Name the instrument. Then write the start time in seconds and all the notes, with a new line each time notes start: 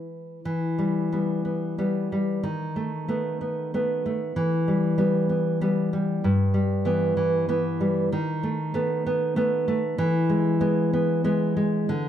nylon-string guitar
Already playing: E3 G#3 B3
0.45 E3
0.78 G3
1.12 G3 B3
1.45 B3
1.78 G3 B3
2.12 G3
2.43 D#3
2.76 A3
3.08 A3 B3
3.41 B3
3.74 A3 B3
4.06 A3
4.36 E3
4.68 G3
4.98 G3 B3
5.29 B3
5.61 G3 B3
5.93 G3
6.24 G2
6.54 G3
6.85 E3 B3
7.17 E3
7.49 E3 B3
7.80 G3
8.12 D#3
8.43 A3
8.74 A3 B3
9.06 B3
9.36 A3 B3
9.68 A3
9.98 E3
10.29 G#3
10.61 G#3 B3
10.93 B3
11.24 G#3 B3
11.57 G#3
11.89 D3